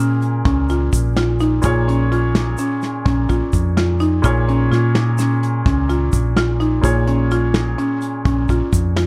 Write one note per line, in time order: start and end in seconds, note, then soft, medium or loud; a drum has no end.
0.00 0.41 A#2 medium
0.00 1.58 A#2 medium
0.00 1.59 A#3 medium
0.00 0.22 C#4 medium
0.00 1.60 G#4 medium
0.00 1.60 A#4 medium
0.22 closed hi-hat medium
0.22 shaker soft
0.45 0.90 C#2 medium
0.45 0.57 C#4 medium
0.45 kick loud
0.45 snare soft
0.45 closed hi-hat medium
0.69 0.94 F4 medium
0.69 closed hi-hat medium
0.69 shaker soft
0.93 1.60 A#1 medium
0.93 kick medium
0.93 closed hi-hat medium
0.93 shaker medium
1.16 1.29 F4 medium
1.16 snare loud
1.16 closed hi-hat medium
1.40 1.52 D#4 medium
1.40 closed hi-hat medium
1.40 shaker soft
1.62 2.54 A#1 medium
1.62 4.18 A#2 medium
1.62 4.19 A#3 medium
1.62 1.76 F4 medium
1.62 4.20 G#4 medium
1.62 4.20 C#5 medium
1.62 kick loud
1.62 closed hi-hat medium
1.62 shaker medium
1.88 2.00 C#4 medium
1.88 closed hi-hat medium
2.12 2.35 F4 medium
2.12 closed hi-hat medium
2.35 snare loud
2.35 closed hi-hat medium
2.35 shaker soft
2.58 2.83 C#4 medium
2.58 closed hi-hat medium
2.58 shaker soft
2.82 snare soft
2.82 closed hi-hat medium
2.82 shaker soft
3.06 3.28 A#1 medium
3.06 3.18 C#4 medium
3.06 kick loud
3.06 snare soft
3.06 closed hi-hat medium
3.29 3.41 A#1 medium
3.29 3.53 F4 medium
3.29 kick medium
3.29 closed hi-hat medium
3.29 shaker soft
3.53 4.20 F2 medium
3.53 kick medium
3.53 closed hi-hat medium
3.53 shaker soft
3.77 3.89 F4 medium
3.77 snare medium
3.77 closed hi-hat medium
4.00 4.12 D#4 medium
4.00 closed hi-hat medium
4.00 shaker soft
4.22 4.69 A#1 medium
4.22 6.79 A#2 medium
4.22 6.80 A#3 medium
4.22 4.36 F4 medium
4.22 6.80 G#4 medium
4.22 6.80 C#5 medium
4.22 kick medium
4.22 closed hi-hat medium
4.22 shaker medium
4.49 4.60 C#4 medium
4.49 closed hi-hat medium
4.71 5.62 A#2 medium
4.71 4.95 F4 medium
4.71 snare soft
4.71 closed hi-hat medium
4.95 snare loud
4.95 closed hi-hat medium
5.18 5.43 C#4 medium
5.18 snare soft
5.18 closed hi-hat medium
5.18 shaker soft
5.43 closed hi-hat medium
5.66 6.10 C#2 medium
5.66 5.78 C#4 medium
5.66 kick loud
5.66 snare soft
5.66 closed hi-hat medium
5.89 6.13 F4 medium
5.89 closed hi-hat medium
5.89 shaker soft
6.13 6.80 A#1 medium
6.13 kick medium
6.13 closed hi-hat medium
6.13 shaker medium
6.37 6.49 F4 medium
6.37 snare medium
6.37 closed hi-hat medium
6.60 6.72 D#4 medium
6.60 closed hi-hat medium
6.81 7.74 A#1 medium
6.81 9.07 A#2 medium
6.81 9.07 A#3 medium
6.81 6.96 F4 medium
6.81 9.07 G#4 medium
6.81 9.07 C#5 medium
6.81 kick medium
6.81 closed hi-hat medium
6.81 shaker medium
7.07 7.19 C#4 medium
7.07 closed hi-hat medium
7.31 7.55 F4 medium
7.31 closed hi-hat medium
7.54 snare medium
7.54 closed hi-hat medium
7.54 shaker soft
7.78 8.02 C#4 medium
7.78 closed hi-hat medium
8.02 closed hi-hat medium
8.02 shaker soft
8.25 8.48 A#1 medium
8.25 8.38 C#4 medium
8.25 kick loud
8.25 snare soft
8.25 closed hi-hat medium
8.49 8.60 A#1 medium
8.49 8.74 F4 medium
8.49 kick medium
8.49 closed hi-hat medium
8.49 shaker soft
8.73 9.07 F2 medium
8.73 kick medium
8.73 closed hi-hat medium
8.73 shaker medium
8.96 9.07 F4 medium
8.96 snare loud
8.96 closed hi-hat medium